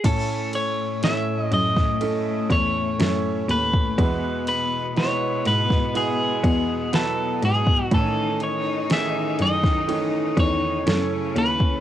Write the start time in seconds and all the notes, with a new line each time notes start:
0.04 A2 A3 C#4 E4 A4 C#5, kick, crash, ride
0.53 C#5, ride
1.02 A3 C#4 E4 C#5 E5, snare, ride
1.41 D#5
1.52 F#2 D#5, ride
1.77 kick, snare
2.01 A3 C#4 E4 A4, ride
2.50 E2 C#5, kick, ride
2.99 F#2 A3 C#4 E4 C#5, snare, ride
3.48 D#2 B4, ride
3.73 kick
3.98 E2 B2 E3 G#3 B3 E4 F#4 B4, kick, ride
4.47 B4, ride
4.96 G#3 E4 F#4 B4 C#5, snare, ride
5.45 G#2 B4, ride
5.70 kick, snare
5.94 G#3 E4 F#4 G#4 B4, ride
6.44 E2, kick, ride
6.93 F#3 E4 F#4 A4 B4, snare, ride
7.42 G#2 G#4, ride
7.67 kick
7.91 A2 D#3 E3 A3 C#4 D#4 A4 B4, kick, ride
7.99 C#5
8.40 C#5, ride
8.89 E3 A3 C#4 G#4 E5, snare, ride
9.39 F#2 D#5, ride
9.64 kick, snare
9.87 E3 A3 C#4 C#5, ride
10.37 E2 C#5, kick, ride
10.86 F#2 C#3 A3 C#4 E4 A4, snare, ride
11.36 D#2 B4, ride
11.60 kick